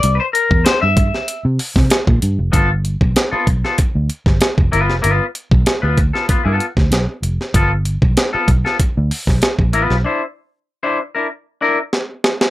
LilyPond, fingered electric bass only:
\new Staff \with { instrumentName = "Fingered electric bass" } { \clef bass \time 4/4 \key g \mixolydian \tempo 4 = 96 c,16 r8 e,16 r16 g,8 r8 c16 r16 c16 r16 bes,16 g,16 f,,16 | g,,8. b,,16 r8 b,,16 r8 d,16 r16 g,,16 r16 f,,16 g,,16 f,,16 | g,,16 r8 b,,16 r16 d,8 r8 g,16 r16 d,16 b,,16 r16 f,,16 r16 | g,,8. b,,16 r8 b,,16 r8 d,16 r16 b,,16 r16 bes,,16 a,,16 b,,16 |
r1 | }